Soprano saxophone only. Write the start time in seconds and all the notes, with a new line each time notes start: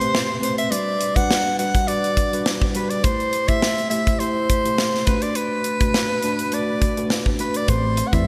Already playing: C5
0.44 C5
0.58 E5
0.71 D5
1.16 F#5
1.59 F#5
1.88 D5
2.76 B4
2.90 D5
3.04 C5
3.48 E5
3.90 E5
4.19 C5
5.06 B4
5.22 D5
5.36 B4
6.54 D5
7.40 B4
7.57 D5
7.69 C5
8.07 F#5
8.14 E5